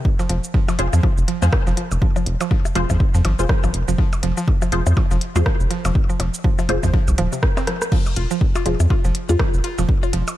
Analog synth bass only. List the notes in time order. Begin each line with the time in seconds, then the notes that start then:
0.30 F1
0.79 F1
0.93 F2
1.18 F1
1.42 F2
1.67 F1
1.92 F1
2.26 F1
2.76 F1
2.90 F2
3.14 F2
3.25 G#1
3.39 F1
3.64 G#1
3.74 F1
3.88 F1
4.23 F1
4.72 F1
4.87 F2
5.11 F1
5.36 F2
5.60 F1
5.85 F1
6.20 F1
6.69 F1
6.83 F2
7.08 C2
7.18 D#1
8.16 F1
8.66 F1
8.80 F2
9.05 F1
9.29 F2
9.54 F1
9.78 F1
10.13 F1